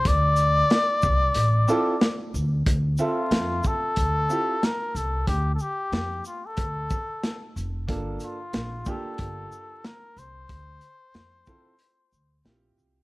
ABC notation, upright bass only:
X:1
M:4/4
L:1/8
Q:"Swing 16ths" 1/4=92
K:Dm
V:1 name="Upright bass" clef=bass
D,,2 z C,, A,,, z2 D,, | D,, z F,, z D,, z2 C,, | D,, z F,, z D,, z2 F,,, | G,,, z B,,, z G,,, z2 C,, |
D,, z F,, z2 D,, B,,, C,, |]